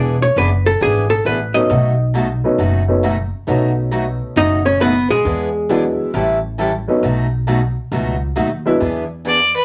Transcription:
Already playing: upright bass E1, steel-string acoustic guitar E3 B3 D4 G#4, hollow-body jazz guitar D5
0.22 hollow-body jazz guitar C#5
0.36 upright bass F#1, steel-string acoustic guitar E3 B3 D4 G#4, hollow-body jazz guitar B4
0.66 hollow-body jazz guitar A4
0.80 upright bass G#1, steel-string acoustic guitar E3 B3 D4 G#4, hollow-body jazz guitar G#4
1.10 hollow-body jazz guitar A4
1.25 upright bass A1, steel-string acoustic guitar E3 B3 D4 G#4, hollow-body jazz guitar B4
1.54 upright piano F#3 A3 B3 C#4 D#4, hollow-body jazz guitar D#5
1.70 upright bass B1, steel-string acoustic guitar B2 F#3 A3 D#4 F#4
2.14 steel-string acoustic guitar B2 F#3 A3 D#4 F#4
2.44 upright piano F#3 A3 B3 C#4 D#4
2.58 upright bass F#1, steel-string acoustic guitar B2 F#3 A3 D#4 F#4
2.88 upright piano F#3 A3 B3 C#4 D#4
3.03 steel-string acoustic guitar B2 F#3 A3 D#4 F#4
3.47 upright bass B1, steel-string acoustic guitar B2 F#3 A3 D#4 F#4, upright piano F#3 A3 B3 C#4 D#4
3.91 steel-string acoustic guitar B2 F#3 A3 D#4 F#4
4.36 upright bass F#1, steel-string acoustic guitar B2 F#3 A3 D#4 F#4, hollow-body jazz guitar D#4 D#5
4.66 hollow-body jazz guitar C#4 C#5
4.80 steel-string acoustic guitar B2 F#3 A3 D#4 F#4, hollow-body jazz guitar B3 B4
5.10 hollow-body jazz guitar G#3 G#4
5.25 upright bass E2, steel-string acoustic guitar E3 B3 D4 G#4
5.69 steel-string acoustic guitar E3 B3 D4 G#4, upright piano F#3 G#3 B3 D4 E4
6.14 upright bass A1, steel-string acoustic guitar E3 G3 C#4 E4 A4
6.58 steel-string acoustic guitar E3 G3 C#4 E4 A4
6.88 upright piano F#3 A3 B3 C#4 D#4
7.03 upright bass B1, steel-string acoustic guitar B2 F#3 A3 D#4 F#4
7.47 steel-string acoustic guitar B2 F#3 A3 D#4 F#4
7.92 upright bass C#2, steel-string acoustic guitar B2 F#3 A3 D#4 F#4
8.36 upright bass D#2, steel-string acoustic guitar B2 F#3 A3 D#4 F#4
8.65 upright piano F#3 G#3 B3 D4 E4
8.80 upright bass E2, steel-string acoustic guitar E3 B3 D4 G#4
9.25 steel-string acoustic guitar E3 B3 D4 G#4, fiddle D5
9.56 fiddle B4

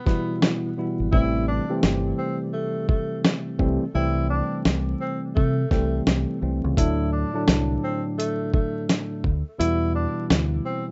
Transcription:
0.06 tine electric piano B2 E3 G3 B3 E4, tenor saxophone B3, kick, snare
0.42 snare
0.77 tine electric piano B2 E3 G3 B3 E4
1.00 fingered electric bass G#1
1.12 fingered electric bass A1, tine electric piano C3 E3 G3 A3 C4, tenor saxophone E4, kick
1.48 tenor saxophone D4
1.69 tine electric piano C3 E3 G3 A3 C4
1.83 fingered electric bass G1, snare
2.18 tenor saxophone C4
2.53 tenor saxophone A3
2.88 tenor saxophone A3, kick
3.25 snare
3.59 fingered electric bass C2, tine electric piano C3 E3 G3 A3 C4, kick
3.94 fingered electric bass C2, tine electric piano C3 E3 G3 A3 C4, tenor saxophone E4
4.30 tenor saxophone D4
4.65 fingered electric bass C2, snare
5.01 tenor saxophone C4
5.35 fingered electric bass C3, tenor saxophone A3, kick
5.71 fingered electric bass C2, tine electric piano C3 E3 G3 A3 C4, tenor saxophone A3, kick, snare
6.07 fingered electric bass C2, snare
6.41 fingered electric bass C2, tine electric piano C3 E3 G3 A3 C4
6.64 fingered electric bass C#2
6.76 fingered electric bass D2, tine electric piano A2 D3 F#3 A3 D4, tenor saxophone E4, kick, closed hi-hat
7.12 tenor saxophone D4
7.34 tine electric piano A2 D3 F#3 A3 D4
7.48 fingered electric bass C2, snare, closed hi-hat
7.84 tenor saxophone C4
8.18 tenor saxophone A3, closed hi-hat
8.54 tenor saxophone A3, kick
8.89 snare, closed hi-hat
9.24 fingered electric bass D2, kick
9.58 fingered electric bass E2, tine electric piano B2 E3 G3 B3 E4, tenor saxophone E4, closed hi-hat
9.95 tenor saxophone D4
10.30 fingered electric bass D2, snare, closed hi-hat
10.65 tenor saxophone C4

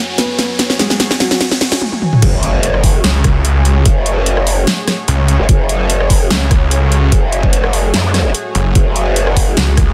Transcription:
Already playing: analog synth pad F#3 F#4 C#5 G#5, riser
0.18 grand piano B3 B4, snare, closed hi-hat
0.39 snare, closed hi-hat
0.59 snare, closed hi-hat
0.70 snare
0.79 grand piano G#3 G#4, snare, closed hi-hat
0.90 snare
1.00 snare, closed hi-hat
1.11 snare
1.20 grand piano F#3 F#4, snare, closed hi-hat
1.31 snare
1.41 snare, closed hi-hat
1.51 snare
1.61 snare, closed hi-hat
1.72 snare
1.81 high tom
1.92 high tom
2.02 mid tom
2.13 mid tom
2.22 wobble bass F#1, analog synth pad A3 F#4 G#4 C#5, kick, closed hi-hat, crash, impact
2.43 closed hi-hat
2.63 closed hi-hat
2.74 cross-stick
2.84 kick, open hi-hat
3.04 detuned saw bass C#2, snare, closed hi-hat
3.24 kick, cross-stick, closed hi-hat
3.45 closed hi-hat
3.65 closed hi-hat
3.86 wobble bass F#1, kick, closed hi-hat
4.06 closed hi-hat
4.26 closed hi-hat
4.37 cross-stick
4.47 open hi-hat
4.67 snare, closed hi-hat
4.88 cross-stick, snare, closed hi-hat
5.08 detuned saw bass C#2, closed hi-hat
5.28 closed hi-hat
5.39 wobble bass F#1
5.49 wobble bass F#1, kick, closed hi-hat
5.69 closed hi-hat
5.90 closed hi-hat
6.00 cross-stick
6.10 kick, open hi-hat
6.30 detuned saw bass C#2, snare, closed hi-hat
6.51 kick, cross-stick, closed hi-hat
6.71 closed hi-hat
6.92 closed hi-hat
7.12 wobble bass F#1, kick, closed hi-hat
7.32 closed hi-hat
7.43 kick
7.53 closed hi-hat
7.64 cross-stick
7.73 open hi-hat
7.94 wobble bass F#2, snare, closed hi-hat
8.14 cross-stick, snare, closed hi-hat
8.35 closed hi-hat
8.55 detuned saw bass F#1, closed hi-hat
8.75 wobble bass F#1, analog synth pad F#5, kick, closed hi-hat
8.96 closed hi-hat
9.16 closed hi-hat
9.27 cross-stick
9.37 kick, open hi-hat
9.57 detuned saw bass C#2, snare, closed hi-hat
9.77 kick, cross-stick, closed hi-hat

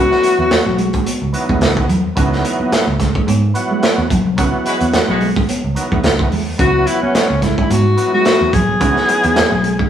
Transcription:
Already playing: tonewheel organ E3 F#3 B3 F#4, tenor saxophone F#4
0.11 snare
0.23 muted clean electric guitar stroke, closed hi-hat
0.39 picked electric bass E2, clean electric guitar B3
0.51 muted picked electric bass stroke, snare, closed hi-hat
0.66 picked electric bass B1
0.78 clean electric guitar G#3, closed hi-hat
0.93 clean electric guitar G#3, kick, closed hi-hat
1.06 clean electric guitar B3, closed hi-hat
1.22 picked electric bass C#2, muted clean electric guitar stroke
1.33 tonewheel organ E3 F#3 B3 D#4, closed hi-hat
1.49 picked electric bass E2, clean electric guitar G#3, kick
1.61 picked electric bass C#2, snare, closed hi-hat
1.77 kick
1.89 picked electric bass E2, clean electric guitar F#3, closed hi-hat
2.16 picked electric bass C#2, tonewheel organ E3 F#3 B3 D#4, clean electric guitar C#4, kick, closed hi-hat
2.33 snare
2.44 muted clean electric guitar stroke, closed hi-hat
2.60 clean electric guitar B3, muted picked electric bass stroke
2.72 muted picked electric bass stroke, muted clean electric guitar stroke, snare, closed hi-hat
2.87 picked electric bass C#2
3.00 clean electric guitar G#3, kick, snare, closed hi-hat
3.15 clean electric guitar G#3, kick
3.27 picked electric bass G#2, clean electric guitar B3, closed hi-hat
3.44 muted clean electric guitar stroke
3.54 tonewheel organ E3 F#3 B3 F#4, closed hi-hat
3.71 clean electric guitar G#3
3.83 snare, closed hi-hat
3.98 picked electric bass E2
4.10 picked electric bass A#1, clean electric guitar F#3, kick, closed hi-hat
4.26 picked electric bass B1
4.37 picked electric bass C#2, tonewheel organ D#3 F#3 B3 F#4, clean electric guitar C#4, kick, closed hi-hat
4.43 tonewheel organ E3
4.66 horn section G#3 F#4 B4, muted clean electric guitar stroke, closed hi-hat
4.80 picked electric bass E2, clean electric guitar B3, closed hi-hat
4.93 muted clean electric guitar stroke, muted picked electric bass stroke, snare, closed hi-hat
5.08 picked electric bass B1, horn section G#3 F#4 B4
5.21 clean electric guitar G#3, open hi-hat
5.36 clean electric guitar G#3, kick
5.49 clean electric guitar B3, closed hi-hat
5.64 picked electric bass C#2, muted clean electric guitar stroke
5.75 tonewheel organ D#3 F#3 B3 D#4, closed hi-hat
5.82 tonewheel organ E3
5.91 picked electric bass E2, clean electric guitar G#3, kick
6.03 picked electric bass C#2, snare, closed hi-hat
6.19 kick
6.31 picked electric bass E2, clean electric guitar G#3, open hi-hat
6.58 picked electric bass C#2, tonewheel organ E3 F#3 B3 F#4, clean electric guitar C#4, tenor saxophone F#4, kick, closed hi-hat
6.87 tenor saxophone E4, muted clean electric guitar stroke, closed hi-hat
7.02 clean electric guitar B3, tenor saxophone C#4, muted picked electric bass stroke
7.15 muted clean electric guitar stroke, muted picked electric bass stroke, snare, closed hi-hat
7.30 picked electric bass C#2
7.42 clean electric guitar G#3, tenor saxophone E4, kick, snare, closed hi-hat
7.58 clean electric guitar G#3, tenor saxophone E4, kick
7.70 picked electric bass G#2, clean electric guitar B3, tenor saxophone F#4, closed hi-hat
7.86 muted clean electric guitar stroke
7.97 tonewheel organ E3 F#3 B3 D#4, closed hi-hat
8.14 clean electric guitar G#3, tenor saxophone F#4
8.25 snare, closed hi-hat
8.41 picked electric bass E2
8.53 picked electric bass A#1, clean electric guitar F#3, tenor saxophone G#4, kick, closed hi-hat
8.69 picked electric bass B1
8.80 picked electric bass C#2, tonewheel organ E3 F#3 B3 D#4, clean electric guitar C#4, kick, closed hi-hat
8.96 snare
9.08 muted clean electric guitar stroke, closed hi-hat
9.23 picked electric bass E2, clean electric guitar B3, closed hi-hat
9.36 muted picked electric bass stroke, muted clean electric guitar stroke, snare, closed hi-hat
9.52 picked electric bass B1
9.64 clean electric guitar G#3, closed hi-hat
9.79 clean electric guitar G#3, kick

